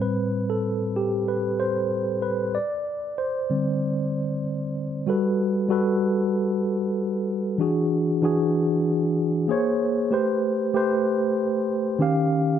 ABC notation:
X:1
M:4/4
L:1/16
Q:1/4=95
K:Ador
V:1 name="Tine electric piano"
B3 A3 G2 B2 c4 B2 | d4 c8 z4 | [G,FAB]4 [G,FAB]8 z4 | [E,DF^G]4 [E,DFG]8 [_B,_Ac_d]4 |
[A,GBc]4 [A,GBc]8 [^D,^CG^e]4 |]
V:2 name="Tine electric piano" clef=bass
[A,,G,C]4 z12 | z6 [D,G,C]2 z8 | z16 | z16 |
z16 |]